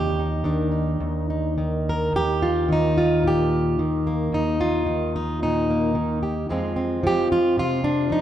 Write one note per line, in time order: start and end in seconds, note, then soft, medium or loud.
0.00 1.00 D#2 medium
0.00 1.88 G4 medium
0.19 0.71 D#4 soft
0.44 1.57 D#3 medium
0.44 2.11 D4 soft
0.72 1.30 D#4 soft
1.00 2.12 D#2 medium
1.30 2.42 D#4 soft
1.58 2.68 D#3 medium
1.89 2.16 A#4 medium
2.13 4.31 D#2 medium
2.13 2.71 G4 loud
2.42 2.96 F4 medium
2.68 3.78 D#3 medium
2.72 3.27 D#4 medium
2.98 3.80 F4 medium
3.24 3.79 A#2 medium
3.24 4.34 G4 medium
3.79 4.85 D#3 medium
4.07 4.60 A#3 soft
4.32 6.49 D#2 medium
4.32 5.15 D#4 medium
4.61 5.69 F4 medium
4.86 5.94 D#3 medium
5.16 5.42 D#4 medium
5.42 5.97 A#2 medium
5.42 6.22 D#4 medium
5.70 6.51 A#3 soft
5.95 6.49 D#3 medium
6.23 6.47 G4 soft
6.49 8.21 F2 medium
6.49 7.02 F3 medium
6.49 8.21 G#3 soft
6.49 6.75 C4 medium
6.49 7.04 F4 soft
6.76 7.83 C4 soft
7.03 8.08 F3 medium
7.03 7.32 G4 loud
7.32 7.57 F4 medium
7.57 8.10 C3 medium
7.57 8.11 F4 medium
7.84 8.21 D4 medium
8.10 8.21 F3 medium
8.10 8.21 D#4 medium